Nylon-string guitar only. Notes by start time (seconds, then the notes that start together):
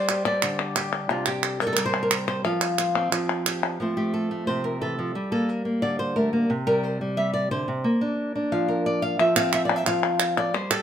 Already playing: G3 C5 D5
0.10 G4
0.26 G4 D5
0.43 D3
0.76 G4
1.10 C3 F4
1.27 G4
1.44 A4
1.61 G3 A#4
1.67 A4
1.73 A#4
1.77 G3
1.86 C5
2.03 A#4
2.12 C4
2.28 C5
2.44 F3 F5
2.79 C5
2.95 C4
3.12 F3
3.47 G4
3.80 F3 A3 C4 C5
3.97 A3 G4
4.14 A4
4.31 A3
4.47 C3 C5
4.64 A#4
4.81 E3 A4
4.99 F3
5.15 G3
5.32 A#3 A4
5.48 A#4
5.65 A#3
5.82 D3 D5
5.99 C5
6.16 A3 A#4
6.33 A#3
6.50 C3
6.67 G3 A#4
6.83 C5
7.01 G3
7.17 G3 E5
7.34 D5
7.51 D3 C5
7.68 C3
7.84 A#3
8.01 D4
8.36 D4
8.52 F3 F5
8.68 A#4
8.86 D5
9.02 F5
9.19 F3 E5
9.36 C4 F5
9.54 E5
9.65 D5
9.70 C4
9.76 E5
9.87 F3 F5
10.38 D5
10.54 G3 C5
10.71 G4 A4